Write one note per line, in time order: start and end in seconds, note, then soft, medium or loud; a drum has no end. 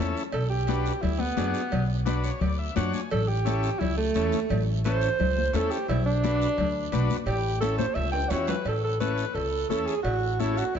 0.00 0.12 E2 medium
0.00 0.23 C#4 medium
0.00 0.23 E4 medium
0.00 0.23 A4 medium
0.17 short guiro medium
0.32 0.88 B1 medium
0.32 0.49 A4 medium
0.32 cowbell loud
0.32 high conga soft
0.32 long guiro medium
0.50 1.03 G4 medium
0.67 0.92 D4 medium
0.67 0.93 F#4 medium
0.67 0.93 B4 medium
0.67 cowbell medium
0.67 high conga loud
0.67 short guiro medium
0.86 short guiro medium
1.01 1.31 D2 medium
1.01 1.21 E4 medium
1.01 cowbell medium
1.01 high conga soft
1.01 low conga medium
1.01 long guiro medium
1.19 1.87 B3 loud
1.19 high conga medium
1.37 1.51 F#2 medium
1.37 1.61 D4 medium
1.37 1.62 F#4 medium
1.37 1.62 G#4 medium
1.37 cowbell medium
1.37 high conga medium
1.37 low timbale medium
1.37 short guiro medium
1.54 short guiro medium
1.71 2.28 B1 medium
1.71 cowbell loud
1.71 high conga soft
1.71 low conga medium
1.71 long guiro medium
2.06 2.31 D4 medium
2.06 2.31 F#4 medium
2.06 2.31 B4 medium
2.06 cowbell medium
2.06 high conga medium
2.06 short guiro medium
2.24 2.40 C#5 medium
2.24 short guiro medium
2.40 2.69 D2 medium
2.40 2.58 D5 medium
2.40 cowbell medium
2.40 high conga soft
2.40 low conga medium
2.40 long guiro medium
2.59 2.75 E5 medium
2.76 2.90 F#2 loud
2.76 3.00 D4 medium
2.76 3.01 F#4 medium
2.76 3.01 C#5 medium
2.76 2.93 F#5 medium
2.76 cowbell medium
2.76 high conga medium
2.76 low timbale medium
2.76 short guiro medium
2.93 3.10 G#5 medium
2.93 high conga medium
2.93 short guiro medium
3.10 3.67 A1 loud
3.10 3.29 A4 medium
3.10 cowbell loud
3.10 high conga soft
3.10 low conga medium
3.10 long guiro medium
3.28 3.81 G4 medium
3.45 3.70 C#4 medium
3.45 3.70 E4 medium
3.45 3.70 A4 medium
3.45 cowbell medium
3.45 high conga medium
3.45 short guiro medium
3.63 short guiro medium
3.79 4.08 C#2 loud
3.79 3.97 E4 medium
3.79 cowbell medium
3.79 high conga soft
3.79 low conga medium
3.79 long guiro medium
3.97 4.65 A3 loud
4.14 4.29 E2 medium
4.14 4.40 C#4 medium
4.14 4.40 E4 medium
4.14 4.40 A4 medium
4.14 cowbell medium
4.14 high conga medium
4.14 short guiro medium
4.32 high conga medium
4.32 short guiro medium
4.49 5.05 A1 loud
4.49 cowbell loud
4.49 high conga soft
4.49 low conga medium
4.49 long guiro medium
4.84 5.09 C#4 medium
4.84 5.09 E4 medium
4.84 5.09 A4 medium
4.84 5.57 C5 loud
4.84 cowbell medium
4.84 high conga medium
4.84 short guiro medium
5.01 short guiro medium
5.19 5.47 C#2 loud
5.19 cowbell medium
5.19 high conga soft
5.19 low conga medium
5.19 long guiro medium
5.38 high conga medium
5.53 5.67 E2 medium
5.53 5.78 C#4 medium
5.53 5.78 E4 medium
5.53 5.78 A4 medium
5.53 5.72 A4 medium
5.53 cowbell medium
5.53 high conga medium
5.53 low timbale medium
5.53 short guiro medium
5.71 5.88 G4 medium
5.71 short guiro medium
5.88 6.44 B1 loud
5.88 6.05 E4 medium
5.88 cowbell loud
5.88 high conga soft
5.88 low conga medium
5.88 long guiro medium
6.06 7.07 D4 loud
6.23 6.48 D4 medium
6.23 6.48 F#4 medium
6.23 6.48 B4 medium
6.23 cowbell medium
6.23 high conga medium
6.23 short guiro medium
6.42 short guiro medium
6.57 6.85 D2 loud
6.57 cowbell medium
6.57 high conga soft
6.57 low conga medium
6.57 long guiro medium
6.92 7.06 B1 loud
6.92 7.17 D4 medium
6.92 7.17 F#4 medium
6.92 7.17 B4 medium
6.92 cowbell medium
6.92 high conga medium
6.92 short guiro medium
7.10 high conga medium
7.10 short guiro medium
7.26 7.82 A1 loud
7.26 7.59 G4 loud
7.26 cowbell loud
7.26 high conga soft
7.26 long guiro medium
7.60 7.86 C#4 medium
7.60 7.86 E4 medium
7.60 7.77 A4 loud
7.60 7.87 A4 medium
7.60 cowbell medium
7.60 high conga medium
7.60 short guiro medium
7.78 7.96 C5 medium
7.78 high conga loud
7.78 short guiro medium
7.94 8.24 C#2 loud
7.94 8.11 E5 medium
7.94 cowbell medium
7.94 long guiro medium
8.12 8.31 G5 medium
8.12 high timbale medium
8.29 8.45 E2 loud
8.29 8.55 C#4 medium
8.29 8.56 E4 medium
8.29 8.56 F#4 medium
8.29 8.47 C#5 medium
8.29 cowbell medium
8.29 low timbale medium
8.29 short guiro medium
8.47 8.65 B4 medium
8.47 low conga medium
8.47 low timbale loud
8.47 short guiro medium
8.65 9.21 A1 medium
8.65 8.83 A4 medium
8.65 cowbell loud
8.65 long guiro medium
8.84 8.99 A4 medium
9.00 9.25 C#4 medium
9.00 9.25 E4 medium
9.00 9.25 A4 medium
9.00 9.36 B4 medium
9.00 high conga medium
9.00 short guiro medium
9.18 short guiro medium
9.34 9.63 C#2 medium
9.34 9.69 A4 medium
9.34 cowbell medium
9.34 long guiro medium
9.69 9.84 E2 medium
9.69 9.94 C#4 medium
9.69 9.95 E4 medium
9.69 9.88 A4 medium
9.69 9.95 A4 medium
9.69 high conga medium
9.69 short guiro medium
9.86 10.02 G#4 medium
9.86 short guiro medium
10.03 10.60 A1 medium
10.03 10.41 F#4 medium
10.03 cowbell loud
10.03 long guiro medium
10.39 10.64 C#4 medium
10.39 10.64 E4 medium
10.39 10.59 E4 medium
10.39 10.64 A4 medium
10.39 high conga medium
10.39 short guiro medium
10.57 10.75 F#4 medium
10.57 short guiro medium
10.75 10.79 C#2 medium
10.75 10.79 E4 medium
10.75 cowbell medium
10.75 long guiro medium